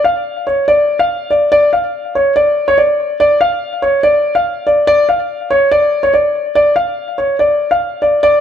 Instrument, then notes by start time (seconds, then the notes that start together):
grand piano
0.04 F5
0.47 C#5
0.68 D5
0.99 F5
1.30 D5
1.52 D5
1.73 F5
2.15 C#5
2.36 D5
2.68 C#5
2.78 D5
3.20 D5
3.41 F5
3.82 C#5
4.03 D5
4.35 F5
4.67 D5
4.87 D5
5.09 F5
5.51 C#5
5.71 D5
6.03 C#5
6.14 D5
6.55 D5
6.76 F5
7.18 C#5
7.39 D5
7.71 F5
8.02 D5
8.23 D5